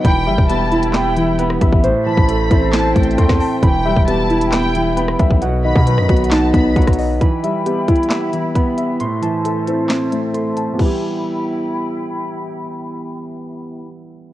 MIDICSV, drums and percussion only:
0, 0, Header, 1, 2, 480
1, 0, Start_track
1, 0, Key_signature, 1, "minor"
1, 0, Tempo, 447761
1, 49, Time_signature, 4, 2, 24, 8
1, 15363, End_track
2, 0, Start_track
2, 0, Title_t, "Drums"
2, 49, Note_on_c, 9, 36, 121
2, 49, Note_on_c, 9, 42, 79
2, 156, Note_off_c, 9, 36, 0
2, 156, Note_off_c, 9, 42, 0
2, 410, Note_on_c, 9, 36, 106
2, 517, Note_off_c, 9, 36, 0
2, 531, Note_on_c, 9, 42, 98
2, 639, Note_off_c, 9, 42, 0
2, 769, Note_on_c, 9, 42, 45
2, 876, Note_off_c, 9, 42, 0
2, 889, Note_on_c, 9, 42, 75
2, 996, Note_off_c, 9, 42, 0
2, 1006, Note_on_c, 9, 39, 93
2, 1009, Note_on_c, 9, 42, 83
2, 1010, Note_on_c, 9, 38, 113
2, 1113, Note_off_c, 9, 39, 0
2, 1116, Note_off_c, 9, 42, 0
2, 1117, Note_off_c, 9, 38, 0
2, 1251, Note_on_c, 9, 42, 71
2, 1358, Note_off_c, 9, 42, 0
2, 1490, Note_on_c, 9, 42, 83
2, 1597, Note_off_c, 9, 42, 0
2, 1610, Note_on_c, 9, 37, 92
2, 1717, Note_off_c, 9, 37, 0
2, 1729, Note_on_c, 9, 42, 77
2, 1730, Note_on_c, 9, 36, 94
2, 1836, Note_off_c, 9, 42, 0
2, 1837, Note_off_c, 9, 36, 0
2, 1849, Note_on_c, 9, 36, 100
2, 1956, Note_off_c, 9, 36, 0
2, 1969, Note_on_c, 9, 42, 79
2, 2076, Note_off_c, 9, 42, 0
2, 2330, Note_on_c, 9, 36, 102
2, 2438, Note_off_c, 9, 36, 0
2, 2452, Note_on_c, 9, 42, 102
2, 2559, Note_off_c, 9, 42, 0
2, 2689, Note_on_c, 9, 42, 73
2, 2690, Note_on_c, 9, 36, 105
2, 2796, Note_off_c, 9, 42, 0
2, 2797, Note_off_c, 9, 36, 0
2, 2926, Note_on_c, 9, 39, 89
2, 2929, Note_on_c, 9, 42, 80
2, 2930, Note_on_c, 9, 38, 118
2, 3033, Note_off_c, 9, 39, 0
2, 3037, Note_off_c, 9, 38, 0
2, 3037, Note_off_c, 9, 42, 0
2, 3169, Note_on_c, 9, 36, 89
2, 3169, Note_on_c, 9, 42, 69
2, 3249, Note_off_c, 9, 42, 0
2, 3249, Note_on_c, 9, 42, 57
2, 3276, Note_off_c, 9, 36, 0
2, 3329, Note_off_c, 9, 42, 0
2, 3329, Note_on_c, 9, 42, 42
2, 3409, Note_off_c, 9, 42, 0
2, 3409, Note_on_c, 9, 36, 101
2, 3409, Note_on_c, 9, 42, 84
2, 3516, Note_off_c, 9, 36, 0
2, 3517, Note_off_c, 9, 42, 0
2, 3529, Note_on_c, 9, 36, 96
2, 3529, Note_on_c, 9, 37, 95
2, 3529, Note_on_c, 9, 38, 68
2, 3636, Note_off_c, 9, 36, 0
2, 3636, Note_off_c, 9, 37, 0
2, 3636, Note_off_c, 9, 38, 0
2, 3649, Note_on_c, 9, 46, 53
2, 3756, Note_off_c, 9, 46, 0
2, 3889, Note_on_c, 9, 36, 127
2, 3889, Note_on_c, 9, 42, 78
2, 3996, Note_off_c, 9, 36, 0
2, 3996, Note_off_c, 9, 42, 0
2, 4250, Note_on_c, 9, 36, 105
2, 4358, Note_off_c, 9, 36, 0
2, 4371, Note_on_c, 9, 42, 104
2, 4479, Note_off_c, 9, 42, 0
2, 4609, Note_on_c, 9, 42, 45
2, 4716, Note_off_c, 9, 42, 0
2, 4729, Note_on_c, 9, 42, 75
2, 4836, Note_off_c, 9, 42, 0
2, 4845, Note_on_c, 9, 39, 87
2, 4849, Note_on_c, 9, 38, 114
2, 4849, Note_on_c, 9, 42, 83
2, 4953, Note_off_c, 9, 39, 0
2, 4956, Note_off_c, 9, 42, 0
2, 4957, Note_off_c, 9, 38, 0
2, 5091, Note_on_c, 9, 42, 71
2, 5198, Note_off_c, 9, 42, 0
2, 5330, Note_on_c, 9, 42, 83
2, 5437, Note_off_c, 9, 42, 0
2, 5449, Note_on_c, 9, 37, 94
2, 5556, Note_off_c, 9, 37, 0
2, 5568, Note_on_c, 9, 42, 75
2, 5569, Note_on_c, 9, 36, 97
2, 5676, Note_off_c, 9, 42, 0
2, 5677, Note_off_c, 9, 36, 0
2, 5689, Note_on_c, 9, 36, 100
2, 5796, Note_off_c, 9, 36, 0
2, 5809, Note_on_c, 9, 42, 79
2, 5916, Note_off_c, 9, 42, 0
2, 6170, Note_on_c, 9, 36, 105
2, 6277, Note_off_c, 9, 36, 0
2, 6291, Note_on_c, 9, 42, 100
2, 6398, Note_off_c, 9, 42, 0
2, 6410, Note_on_c, 9, 37, 73
2, 6517, Note_off_c, 9, 37, 0
2, 6529, Note_on_c, 9, 36, 104
2, 6529, Note_on_c, 9, 42, 60
2, 6609, Note_off_c, 9, 42, 0
2, 6609, Note_on_c, 9, 42, 63
2, 6637, Note_off_c, 9, 36, 0
2, 6689, Note_off_c, 9, 42, 0
2, 6689, Note_on_c, 9, 42, 62
2, 6766, Note_on_c, 9, 39, 92
2, 6769, Note_off_c, 9, 42, 0
2, 6769, Note_on_c, 9, 42, 80
2, 6770, Note_on_c, 9, 38, 114
2, 6873, Note_off_c, 9, 39, 0
2, 6876, Note_off_c, 9, 42, 0
2, 6877, Note_off_c, 9, 38, 0
2, 7009, Note_on_c, 9, 36, 91
2, 7011, Note_on_c, 9, 42, 71
2, 7116, Note_off_c, 9, 36, 0
2, 7118, Note_off_c, 9, 42, 0
2, 7249, Note_on_c, 9, 36, 102
2, 7249, Note_on_c, 9, 42, 49
2, 7310, Note_off_c, 9, 42, 0
2, 7310, Note_on_c, 9, 42, 62
2, 7356, Note_off_c, 9, 36, 0
2, 7369, Note_on_c, 9, 36, 98
2, 7370, Note_off_c, 9, 42, 0
2, 7370, Note_on_c, 9, 37, 93
2, 7370, Note_on_c, 9, 42, 74
2, 7429, Note_off_c, 9, 42, 0
2, 7429, Note_on_c, 9, 42, 86
2, 7476, Note_off_c, 9, 36, 0
2, 7477, Note_off_c, 9, 37, 0
2, 7489, Note_on_c, 9, 46, 54
2, 7536, Note_off_c, 9, 42, 0
2, 7596, Note_off_c, 9, 46, 0
2, 7729, Note_on_c, 9, 36, 117
2, 7729, Note_on_c, 9, 42, 76
2, 7836, Note_off_c, 9, 42, 0
2, 7837, Note_off_c, 9, 36, 0
2, 7971, Note_on_c, 9, 42, 77
2, 8079, Note_off_c, 9, 42, 0
2, 8212, Note_on_c, 9, 42, 89
2, 8319, Note_off_c, 9, 42, 0
2, 8449, Note_on_c, 9, 42, 60
2, 8450, Note_on_c, 9, 36, 102
2, 8529, Note_off_c, 9, 42, 0
2, 8529, Note_on_c, 9, 42, 58
2, 8557, Note_off_c, 9, 36, 0
2, 8609, Note_off_c, 9, 42, 0
2, 8609, Note_on_c, 9, 42, 61
2, 8686, Note_on_c, 9, 39, 88
2, 8689, Note_off_c, 9, 42, 0
2, 8689, Note_on_c, 9, 42, 77
2, 8690, Note_on_c, 9, 38, 111
2, 8793, Note_off_c, 9, 39, 0
2, 8797, Note_off_c, 9, 38, 0
2, 8797, Note_off_c, 9, 42, 0
2, 8931, Note_on_c, 9, 42, 68
2, 9038, Note_off_c, 9, 42, 0
2, 9169, Note_on_c, 9, 36, 94
2, 9170, Note_on_c, 9, 42, 84
2, 9276, Note_off_c, 9, 36, 0
2, 9277, Note_off_c, 9, 42, 0
2, 9409, Note_on_c, 9, 42, 70
2, 9516, Note_off_c, 9, 42, 0
2, 9649, Note_on_c, 9, 42, 74
2, 9756, Note_off_c, 9, 42, 0
2, 9891, Note_on_c, 9, 42, 76
2, 9999, Note_off_c, 9, 42, 0
2, 10131, Note_on_c, 9, 42, 88
2, 10238, Note_off_c, 9, 42, 0
2, 10369, Note_on_c, 9, 42, 69
2, 10476, Note_off_c, 9, 42, 0
2, 10606, Note_on_c, 9, 39, 83
2, 10609, Note_on_c, 9, 38, 109
2, 10609, Note_on_c, 9, 42, 78
2, 10713, Note_off_c, 9, 39, 0
2, 10716, Note_off_c, 9, 42, 0
2, 10717, Note_off_c, 9, 38, 0
2, 10851, Note_on_c, 9, 42, 74
2, 10958, Note_off_c, 9, 42, 0
2, 11090, Note_on_c, 9, 42, 81
2, 11197, Note_off_c, 9, 42, 0
2, 11329, Note_on_c, 9, 42, 66
2, 11436, Note_off_c, 9, 42, 0
2, 11569, Note_on_c, 9, 36, 104
2, 11569, Note_on_c, 9, 49, 87
2, 11676, Note_off_c, 9, 49, 0
2, 11677, Note_off_c, 9, 36, 0
2, 15363, End_track
0, 0, End_of_file